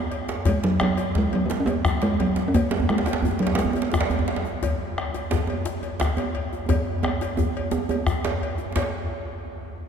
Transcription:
0.11 cowbell, djembe slap
0.29 djembe slap
0.45 talking drum G#3, bombo low, cowbell, djembe slap, djembe tone, djembe bass
0.64 talking drum F#3, djembe slap
0.80 talking drum F#3, bombo rim, cowbell, djembe tone
0.97 bombo rim, cowbell, djembe slap, djembe tone
1.15 talking drum G#3, bombo low, djembe slap
1.33 talking drum F#3, cowbell, djembe tone
1.46 talking drum A#3
1.50 talking drum G#3, djembe slap
1.60 talking drum C#4
1.66 talking drum A#3, cowbell, djembe slap, djembe tone
1.85 bombo rim, bombo low, djembe bass
2.02 talking drum G#3, bombo rim, cowbell, djembe slap
2.14 talking drum G#3
2.20 talking drum F#3, cowbell, djembe tone
2.36 djembe slap, djembe tone
2.48 talking drum C#4
2.54 talking drum A#3, bombo low, cowbell, djembe slap, djembe bass
2.71 djembe slap
2.80 djembe bass
2.89 talking drum G#3, bombo rim, djembe tone
2.98 djembe slap
3.06 bombo rim, cowbell, djembe slap, djembe tone
3.13 djembe slap
3.22 djembe bass
3.25 djembe bass
3.31 djembe tone
3.39 talking drum F#3, cowbell, djembe slap
3.47 djembe slap
3.55 talking drum G#3, djembe slap
3.59 djembe slap
3.65 djembe bass
3.73 djembe slap, djembe tone
3.75 cowbell, djembe tone
3.82 djembe slap
3.92 bombo rim, bombo low, djembe slap, djembe bass
4.00 djembe slap
4.10 bombo rim, cowbell, djembe slap, djembe bass
4.19 djembe tone
4.28 cowbell, djembe slap
4.36 djembe slap
4.45 djembe tone
4.63 bombo low, cowbell, djembe slap, djembe bass
4.98 bombo rim, cowbell
5.14 bombo rim, cowbell, djembe slap, djembe tone
5.31 bombo low, djembe slap, djembe bass
5.47 cowbell, djembe tone
5.66 djembe slap
5.83 cowbell, djembe slap, djembe tone
6.00 bombo rim, bombo low, djembe slap, djembe bass
6.17 bombo rim, cowbell, djembe slap, djembe tone
6.35 cowbell
6.53 djembe tone
6.69 bombo low, cowbell, djembe slap, djembe tone, djembe bass
6.86 bombo rim, djembe slap
7.03 bombo rim, cowbell, djembe tone
7.21 bombo rim, cowbell, djembe slap, djembe tone
7.37 bombo low, djembe tone, djembe bass
7.56 cowbell, djembe slap
7.71 djembe slap, djembe tone
7.89 cowbell, djembe slap, djembe tone
8.07 bombo rim, bombo low, djembe bass
8.25 cowbell, djembe slap
8.42 bombo rim, cowbell
8.58 djembe slap, djembe tone
8.76 bombo low, cowbell, djembe slap, djembe bass

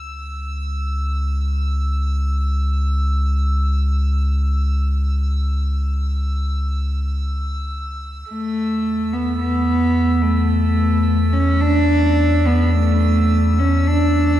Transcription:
Already playing: sub bass C#2, synth texture E6
8.24 synth texture E6
8.30 sub bass E2, cello A3
9.13 cello B3
9.40 cello B3
10.22 cello A3
11.33 cello C#4
11.61 cello D4
12.47 cello B3
12.73 cello A3
13.59 cello C#4
13.88 cello D4

